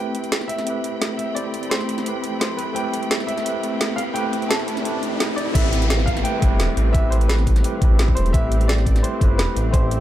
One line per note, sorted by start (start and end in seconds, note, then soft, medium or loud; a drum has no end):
0.00 0.63 A3 medium
0.00 5.51 A3 medium
0.00 0.64 C4 medium
0.00 5.51 C4 medium
0.00 0.65 E4 medium
0.00 0.65 G4 medium
0.00 0.66 B4 loud
0.00 0.50 G5 medium
0.00 5.51 G5 medium
0.00 5.51 B5 medium
0.00 riser medium
0.15 closed hi-hat medium
0.24 closed hi-hat soft
0.32 snare loud
0.32 closed hi-hat medium
0.41 snare soft
0.48 1.16 E5 loud
0.48 closed hi-hat medium
0.59 snare soft
0.59 closed hi-hat soft
0.64 1.32 A3 medium
0.64 1.34 C4 medium
0.64 1.34 E4 medium
0.64 closed hi-hat medium
0.68 1.35 G4 medium
0.68 1.36 B4 medium
0.84 closed hi-hat medium
1.02 snare loud
1.02 closed hi-hat medium
1.17 1.36 E5 medium
1.17 closed hi-hat medium
1.33 2.02 A3 medium
1.33 2.03 C4 medium
1.33 2.04 E4 medium
1.33 1.72 D5 medium
1.33 closed hi-hat medium
1.38 2.05 G4 medium
1.38 2.06 C5 loud
1.54 closed hi-hat medium
1.63 closed hi-hat soft
1.70 2.19 C5 medium
1.70 snare loud
1.70 closed hi-hat medium
1.80 snare soft
1.89 closed hi-hat medium
1.98 snare soft
1.98 closed hi-hat soft
2.03 2.72 A3 medium
2.03 2.73 C4 medium
2.03 2.74 E4 medium
2.03 closed hi-hat medium
2.08 2.75 G4 medium
2.08 2.75 B4 medium
2.24 closed hi-hat medium
2.40 2.58 C5 medium
2.40 snare loud
2.40 closed hi-hat medium
2.57 2.76 B4 medium
2.57 closed hi-hat medium
2.73 3.41 A3 medium
2.73 3.43 C4 medium
2.73 3.44 E4 medium
2.73 3.29 G5 loud
2.73 closed hi-hat medium
2.78 3.45 G4 medium
2.78 3.45 B4 loud
2.94 closed hi-hat medium
3.03 closed hi-hat soft
3.11 snare loud
3.11 closed hi-hat medium
3.20 snare soft
3.27 3.93 E5 loud
3.27 closed hi-hat medium
3.38 snare soft
3.38 closed hi-hat soft
3.43 4.11 A3 medium
3.43 4.13 C4 medium
3.43 4.14 E4 medium
3.43 closed hi-hat medium
3.47 4.14 G4 medium
3.47 4.15 B4 medium
3.63 closed hi-hat medium
3.81 snare loud
3.81 closed hi-hat medium
3.96 4.01 F5 loud
3.96 closed hi-hat medium
4.12 4.81 A3 loud
4.12 4.82 C4 medium
4.12 4.83 E4 medium
4.12 4.51 G5 loud
4.12 closed hi-hat medium
4.17 4.84 G4 medium
4.17 4.85 B4 loud
4.33 closed hi-hat medium
4.42 closed hi-hat soft
4.49 4.98 A5 loud
4.49 snare loud
4.49 closed hi-hat medium
4.60 snare soft
4.68 closed hi-hat medium
4.77 snare soft
4.77 closed hi-hat soft
4.82 5.51 A3 medium
4.82 5.52 C4 medium
4.82 5.53 E4 medium
4.82 closed hi-hat medium
4.87 5.54 G4 medium
4.87 5.55 B4 medium
5.03 closed hi-hat medium
5.20 snare loud
5.20 closed hi-hat medium
5.36 5.53 D5 loud
5.36 closed hi-hat medium
5.52 6.23 A1 loud
5.52 10.00 G3 medium
5.52 6.21 A3 loud
5.52 6.22 C4 medium
5.52 10.00 C4 medium
5.52 6.23 E4 medium
5.52 8.31 B4 medium
5.52 6.08 E5 loud
5.52 kick loud
5.52 closed hi-hat loud
5.52 crash loud
5.52 downlifter medium
5.57 6.24 G4 medium
5.57 6.25 B4 loud
5.73 closed hi-hat medium
5.82 closed hi-hat soft
5.90 snare loud
5.90 closed hi-hat loud
5.99 snare soft
6.06 6.25 F5 loud
6.06 kick medium
6.06 closed hi-hat medium
6.17 snare soft
6.17 closed hi-hat soft
6.23 6.38 A3 medium
6.23 6.40 C4 medium
6.23 6.41 E4 medium
6.23 6.41 G4 medium
6.23 6.41 B4 medium
6.23 6.96 G5 loud
6.23 closed hi-hat medium
6.39 6.61 G1 medium
6.39 6.90 A3 medium
6.39 6.92 C4 medium
6.39 6.93 E4 medium
6.39 kick loud
6.39 closed hi-hat medium
6.44 6.93 G4 medium
6.44 6.94 B4 loud
6.60 6.68 E1 loud
6.60 snare loud
6.60 closed hi-hat loud
6.77 6.93 A1 medium
6.77 closed hi-hat medium
6.92 7.63 A1 loud
6.92 7.61 A3 medium
6.92 7.62 C4 medium
6.92 7.62 E4 medium
6.92 7.10 E5 loud
6.92 kick loud
6.92 closed hi-hat medium
6.96 7.63 G4 medium
6.96 7.64 B4 loud
7.10 7.15 C5 medium
7.10 closed hi-hat medium
7.21 closed hi-hat soft
7.28 7.95 B4 medium
7.28 snare loud
7.28 closed hi-hat medium
7.38 snare soft
7.47 kick medium
7.47 closed hi-hat medium
7.56 snare soft
7.56 closed hi-hat soft
7.63 7.77 A3 medium
7.63 7.79 C4 medium
7.63 7.80 E4 medium
7.63 7.80 G4 medium
7.63 7.81 B4 medium
7.63 closed hi-hat loud
7.79 8.30 A3 medium
7.79 8.31 C4 medium
7.79 8.32 E4 medium
7.79 kick loud
7.79 closed hi-hat medium
7.83 8.33 G4 medium
7.83 8.34 B4 loud
7.91 8.15 A1 medium
7.99 snare loud
7.99 closed hi-hat medium
8.08 kick medium
8.15 8.33 E1 medium
8.15 8.34 C5 medium
8.15 closed hi-hat medium
8.26 closed hi-hat soft
8.31 9.03 A1 loud
8.31 9.00 A3 medium
8.31 9.01 C4 medium
8.31 9.02 E4 medium
8.31 8.69 E5 loud
8.31 kick loud
8.31 closed hi-hat medium
8.36 9.03 G4 medium
8.36 9.03 B4 loud
8.52 closed hi-hat medium
8.61 closed hi-hat soft
8.68 9.04 D5 loud
8.68 snare loud
8.68 closed hi-hat medium
8.78 snare soft
8.86 kick medium
8.86 closed hi-hat medium
8.96 snare soft
8.96 closed hi-hat soft
9.02 9.17 A3 medium
9.02 9.19 C4 medium
9.02 9.20 E4 medium
9.02 9.20 G4 medium
9.02 9.20 B4 medium
9.02 9.39 C5 medium
9.02 closed hi-hat medium
9.18 9.40 G1 medium
9.18 9.70 A3 medium
9.18 9.71 C4 medium
9.18 9.72 E4 medium
9.18 kick loud
9.18 closed hi-hat medium
9.23 9.72 G4 medium
9.23 9.73 B4 loud
9.38 9.47 E1 loud
9.38 9.71 B4 medium
9.38 snare loud
9.38 closed hi-hat medium
9.56 9.72 A1 medium
9.56 closed hi-hat medium
9.71 10.00 A1 loud
9.71 10.00 A3 loud
9.71 10.00 C4 medium
9.71 10.00 E4 medium
9.71 10.00 C5 medium
9.71 kick loud
9.71 closed hi-hat medium
9.75 10.00 G4 medium
9.75 10.00 C5 loud
9.91 closed hi-hat medium